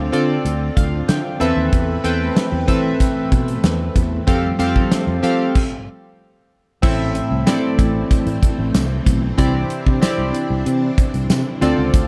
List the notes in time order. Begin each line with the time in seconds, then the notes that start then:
Already playing: D3 C4 F4 A4 D5
0.12 D3 C4 F4 A4 D5, closed hi-hat
0.45 D2, closed hi-hat
0.77 D2 F5, kick, closed hi-hat
1.08 D3 G5, snare, closed hi-hat
1.40 E2 E3 A3 C4 A4 B4 E5 A5, closed hi-hat
1.56 D#2
1.73 E2, kick, closed hi-hat
2.04 E2 C4 A4 B4 G5, closed hi-hat
2.36 snare, closed hi-hat
2.52 E2
2.68 E3 C4 A4 B4 E5, kick, closed hi-hat
3.00 kick, closed hi-hat
3.32 B2, kick, closed hi-hat
3.48 closed hi-hat
3.64 E2, snare, closed hi-hat
3.96 E2, kick, closed hi-hat
4.27 F2 F3 G3 C4 G4 A4 F5, kick, closed hi-hat
4.59 F2 C4 G4 A4 F5, closed hi-hat
4.76 kick
4.92 snare, closed hi-hat
5.07 F2
5.23 F3 C4 G4 A4 F5, closed hi-hat
5.55 kick, crash
6.82 A1 A2 E3 A3 C4 E4 A4 E5, kick, crash
7.15 closed hi-hat
7.31 C2
7.46 C4 E4 A4 D5, snare, closed hi-hat, tambourine
7.79 A1, kick, closed hi-hat
8.11 muted fretless electric bass stroke, kick, closed hi-hat
8.27 A2, closed hi-hat
8.43 kick, closed hi-hat
8.59 A1
8.75 C2, snare, closed hi-hat, tambourine
9.06 B1, kick, closed hi-hat
9.38 C2 C3 C4 D4 E4 G4 D5, kick, closed hi-hat
9.70 closed hi-hat
9.86 C3, kick
10.02 C4 E4 G4 D5, snare, closed hi-hat, tambourine
10.18 C2
10.35 closed hi-hat
10.50 C2
10.66 C3, closed hi-hat
10.98 kick, closed hi-hat
11.14 C2, closed hi-hat
11.30 C3, snare, closed hi-hat, tambourine
11.61 D2 D3 C4 F4 A4 D5, closed hi-hat
11.78 C#2
11.94 D2, kick, closed hi-hat